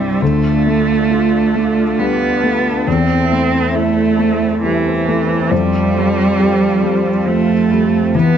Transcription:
Already playing: C2 G3 C4 E4 C5 E5
0.21 D2 A3 D4 F4 A4
0.67 A3
1.11 F4
1.55 A3
1.99 G3 B3
2.43 A3
2.87 E2 C4 E4
3.32 A3
3.75 A3 E4
4.19 A3
4.63 E3 G3
5.08 A3
5.51 F2 G3 F4 A4
5.96 G3
6.40 G4
6.83 G3
7.26 F3 A3
7.71 G3
8.14 E3 B3 E4 G4

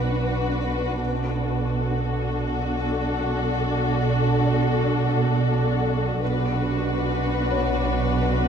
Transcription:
Already playing: B1 B2 D4 F#4 B4 F#5
0.99 B1 B2 D4 F#4 A4 D5 F#5
4.47 D5
6.21 B1 B2 D4 F#4 B4 F#5
7.51 C#5

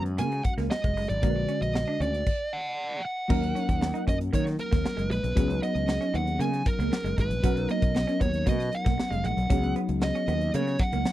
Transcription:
Already playing: F#2 G#3 C#4 F#4 B4
0.06 closed hi-hat
0.18 C#3 A#3 G#5, closed hi-hat, muted conga
0.32 muted clean electric guitar stroke, closed hi-hat
0.44 F#5, kick, closed hi-hat, muted conga
0.58 C#2 A#3, snare, closed hi-hat
0.71 D#5, muted clean electric guitar stroke, snare, high conga
0.84 F1 G#3, kick, closed hi-hat
0.96 F#1 G#3, open hi-hat
1.09 G#1 D5, closed hi-hat, high conga
1.22 A#1 D3 G#3 A#3 F#4 A#4, kick, closed hi-hat, muted conga
1.30 B4
1.36 muted clean electric guitar stroke
1.48 C#4, closed hi-hat, muted conga
1.61 A#1 D#5, closed hi-hat
1.74 muted clean electric guitar stroke, snare, high conga
1.88 D4
2.00 D2 C#4 D5, closed hi-hat, low conga
2.14 closed hi-hat
2.27 kick, crash
2.53 F#5
3.05 F#5
3.28 D#2 F#3 A#3 C#4 D#4 A#4, kick, crash, muted conga
3.42 muted clean electric guitar stroke, closed hi-hat
3.55 C#4, closed hi-hat, muted conga
3.69 D#2, kick, closed hi-hat
3.81 muted clean electric guitar stroke, snare, high conga
3.94 D#4, closed hi-hat
4.07 F#2 C#4 D#5, kick, closed hi-hat, low conga
4.21 closed hi-hat
4.33 D#3 A#3 C#5, kick, closed hi-hat, muted conga
4.46 muted clean electric guitar stroke, snare, closed hi-hat
4.59 A#4, closed hi-hat, muted conga
4.71 D#2 A#3, kick, snare, closed hi-hat
4.84 muted clean electric guitar stroke, snare, high conga
4.97 F#1 G#3, closed hi-hat
5.10 A#1 G#3 B4, closed hi-hat
5.23 B1, closed hi-hat, high conga
5.35 C#2 F#3 B3 C#4 D#4 G#4, kick, closed hi-hat, muted conga
5.50 muted clean electric guitar stroke, closed hi-hat
5.62 B3 D#5, closed hi-hat
5.75 C#2, closed hi-hat
5.88 muted clean electric guitar stroke, snare, high conga
6.01 C#4, closed hi-hat
6.14 D#2 B3 F#5, closed hi-hat, low conga
6.27 closed hi-hat
6.39 C#3 A#3 G#5, closed hi-hat, muted conga
6.54 muted clean electric guitar stroke, closed hi-hat
6.66 A#4, kick, closed hi-hat, muted conga
6.79 C#2 A#3, closed hi-hat
6.92 muted clean electric guitar stroke, snare, high conga
7.04 F#1 G#3, closed hi-hat
7.18 G#1 G#3 B4, kick, closed hi-hat
7.30 A#1, closed hi-hat, high conga
7.43 B1 F#3 B3 C#4 D#4 A#4, kick, closed hi-hat, muted conga
7.56 muted clean electric guitar stroke, closed hi-hat
7.69 A#3 D#5, closed hi-hat
7.82 B1, kick, closed hi-hat
7.95 muted clean electric guitar stroke, snare, high conga
8.07 C#4, closed hi-hat
8.20 D#2 B3 C#5, kick, closed hi-hat, low conga
8.34 closed hi-hat
8.46 B2 A#3 D#5, kick, closed hi-hat, muted conga
8.59 muted clean electric guitar stroke, snare, closed hi-hat
8.72 F#5, closed hi-hat, muted conga
8.85 B1 A#3, kick, snare, closed hi-hat
8.98 muted clean electric guitar stroke, snare, high conga
9.11 F1 G#3 F5, closed hi-hat
9.24 A#1 G#3 F#5, closed hi-hat
9.37 B1, closed hi-hat, high conga
9.50 C#2 F#3 B3 C#4 D#4 G#4, kick, closed hi-hat, muted conga
9.64 muted clean electric guitar stroke, closed hi-hat
9.75 B3, closed hi-hat, muted conga
9.89 C#2, closed hi-hat
10.01 D#5, muted clean electric guitar stroke, snare, high conga
10.15 C#4, closed hi-hat
10.28 D#2 B3, closed hi-hat, low conga
10.41 closed hi-hat
10.54 C#3 A#3 C#5, closed hi-hat, muted conga
10.67 muted clean electric guitar stroke, closed hi-hat
10.79 F#5, kick, closed hi-hat, muted conga
10.92 C#2 A#3, closed hi-hat
11.05 muted clean electric guitar stroke, snare, high conga

